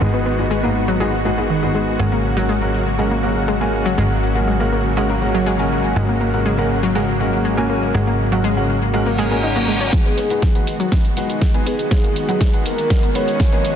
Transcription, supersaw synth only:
0.00 1.96 D#3 medium
0.00 1.96 G#3 medium
0.00 1.96 B3 medium
0.00 9.89 F#4 medium
2.00 9.89 C#3 medium
2.00 9.89 F#3 medium
2.00 9.89 A#3 medium
9.93 13.76 D#3 medium
9.93 13.76 G#3 medium
9.93 13.76 B3 medium
9.93 13.76 F#4 medium

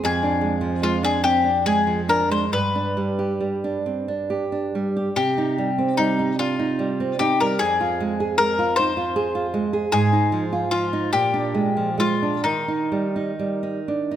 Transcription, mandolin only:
0.05 0.80 G#4 medium
0.83 1.03 F4 medium
1.04 1.23 G#4 medium
1.24 1.63 G4 medium
1.66 2.06 G#4 medium
2.09 2.29 A#4 medium
2.32 2.52 C5 medium
2.53 3.82 B4 medium
5.16 5.93 G4 medium
5.97 6.35 D#4 medium
6.39 7.16 F4 medium
7.19 7.38 G4 medium
7.40 7.59 A#4 medium
7.59 8.34 G#4 medium
8.38 8.74 A#4 medium
8.76 9.87 C5 medium
9.92 10.68 G#4 medium
10.71 11.10 F4 medium
11.13 11.94 G4 medium
12.00 12.42 F4 medium
12.44 14.16 D#4 medium

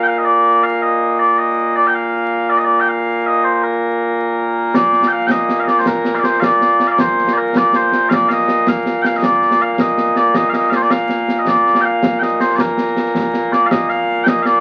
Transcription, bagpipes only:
0.00 14.60 A#2 medium
0.00 14.60 A#3 medium
0.00 0.07 G5 medium
0.07 0.18 F5 medium
0.18 0.25 D#5 medium
0.25 0.63 D5 loud
0.63 0.82 F5 loud
0.82 1.20 D#5 medium
1.20 1.38 D5 medium
1.38 1.76 D#5 loud
1.76 1.87 D5 medium
1.87 1.94 G5 medium
1.94 2.50 F5 medium
2.50 2.58 D5 medium
2.58 2.65 D#5 medium
2.65 2.80 D5 medium
2.80 2.89 G5 medium
2.89 3.26 F5 loud
3.26 3.44 D#5 medium
3.44 3.54 C5 medium
3.54 3.63 C5 medium
3.63 4.75 A#4 medium
4.75 5.07 D5 loud
5.07 5.12 G5 medium
5.12 5.27 F5 loud
5.27 5.60 D#5 loud
5.27 5.31 G5 loud
5.60 5.64 F5 medium
5.64 5.68 D#5 medium
5.68 5.79 D5 medium
5.79 5.87 C5 medium
5.87 6.15 A#4 loud
6.15 6.19 F5 medium
6.19 6.24 D5 medium
6.24 6.40 C5 medium
6.40 6.87 D5 loud
6.40 6.44 F5 loud
6.87 6.92 F5 medium
6.92 7.00 D5 medium
7.00 7.33 C5 loud
7.33 7.37 D5 medium
7.37 7.57 A#4 medium
7.57 7.76 D5 loud
7.76 8.09 C5 loud
8.09 8.13 F5 loud
8.13 8.29 D5 loud
8.29 8.68 D#5 loud
8.29 8.32 F5 loud
8.68 9.02 F5 medium
9.02 9.16 F5 medium
9.02 9.06 G5 medium
9.16 9.24 D#5 medium
9.24 9.62 D5 loud
9.62 9.72 F5 loud
9.72 9.80 F5 medium
9.80 10.17 D#5 loud
10.17 10.35 D5 medium
10.35 10.49 D#5 loud
10.49 10.54 F5 medium
10.54 10.70 D#5 medium
10.70 10.76 D5 medium
10.70 10.73 F5 medium
10.76 10.82 C5 medium
10.82 10.91 D5 medium
10.91 11.39 F5 loud
11.39 11.48 D#5 medium
11.48 11.81 D5 loud
11.81 11.85 G5 loud
11.85 12.19 F5 loud
12.19 12.41 D#5 medium
12.19 12.23 G5 medium
12.41 12.56 C5 medium
12.56 12.60 D5 medium
12.60 13.52 A#4 medium
13.52 13.66 D5 medium
13.66 13.71 F5 medium
13.71 13.89 D#5 loud
13.89 14.24 F5 loud
14.24 14.28 G5 loud
14.28 14.42 D#5 loud
14.42 14.60 D5 loud
14.42 14.46 F5 loud

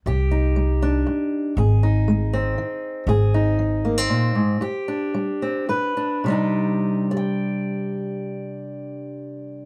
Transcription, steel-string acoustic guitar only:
0.06 0.51 C3 medium
0.06 1.58 G4 medium
0.31 1.83 D#4 soft
0.56 1.01 G3 soft
0.82 1.54 D4 medium
1.06 1.52 G2 medium
1.58 2.03 G#2 medium
1.58 3.05 G#4 soft
1.83 3.05 D#4 soft
2.08 2.53 G#3 medium
2.33 3.84 C4 medium
2.58 3.03 D#3 medium
3.08 3.53 G#2 medium
3.08 4.58 G#4 medium
3.34 4.59 D#4 medium
3.59 4.04 F3 medium
3.85 3.98 A#3 soft
3.98 4.62 C4 soft
4.09 4.35 A#2 medium
4.35 4.61 G#2 medium
4.61 5.09 G2 medium
4.61 5.69 G4 medium
4.88 5.96 D4 soft
5.14 5.63 G3 medium
5.42 5.66 C4 soft
5.69 6.19 G2 medium
5.69 6.22 B4 medium
5.97 6.27 D4 soft
6.24 9.65 C3 soft
6.24 9.65 G3 medium
6.28 9.65 D4 soft
6.28 7.11 D#4 soft
6.28 7.16 G4 soft
7.11 9.65 D5 medium
7.17 9.65 G5 medium

